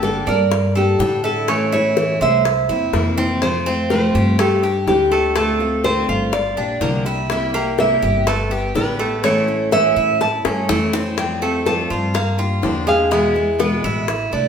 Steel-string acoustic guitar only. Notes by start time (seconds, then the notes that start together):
0.02 D3 G3 A#3 D4 A4
0.26 A#3 D4 A4
0.51 muted steel-string acoustic guitar stroke
0.75 A#3 D4 A4
0.99 D3 G3 D4 A4
1.48 E3 A3 C#4 E4
1.97 E3 A3 C#4 E4
2.21 A3 C#4 E4
2.45 muted steel-string acoustic guitar stroke
2.69 A#3 C4 E4
2.93 C3 E3 A#3 C4 E4
3.42 C3 F3 A3 C4 F4
3.66 A3 C4 F4
3.91 C3 F3 A3 C4 F4
4.39 muted steel-string acoustic guitar stroke
4.63 G3 D4 G4
4.87 D3 G3 D4 G4
5.11 G3 D4 G4
5.35 D3 A3 C4 F4
5.59 A3 C4 F4
5.84 D3 A3 C4 F4
6.32 muted steel-string acoustic guitar stroke
6.57 A#3 D4 G4
6.81 D3 F3 A#3 D4 G4
7.06 A#3 D4 G4
7.29 C3 G3 A#3 E4 G4
7.54 A#3 E4 G4
7.78 C3 G3 A#3 E4 G4
8.27 muted steel-string acoustic guitar stroke
8.50 G3 B3 G4
8.75 D3 G3 B3 G4
8.99 G3 B3 G4
9.23 E3 A3 C#4 E4
9.47 A3 C#4 E4
9.71 E3 A3 C#4 E4
10.21 muted steel-string acoustic guitar stroke
10.45 A3 C#4 E4
10.69 E3 A3 C#4 E4
10.93 A3 C#4 E4
11.17 F3 G3 C4 F4
11.42 G3 C4 F4
11.65 F3 G3 C4 F4
12.14 muted steel-string acoustic guitar stroke
12.38 A#3 D4 G4
12.62 D3 F3 A#3 D4 G4
12.86 A#3 D4 G4
13.11 B2 E3 G#3 B3 E4
13.35 G#3 B3 E4
13.59 B2 E3 G#3 B3 E4
14.08 muted steel-string acoustic guitar stroke
14.31 A3 D4 E4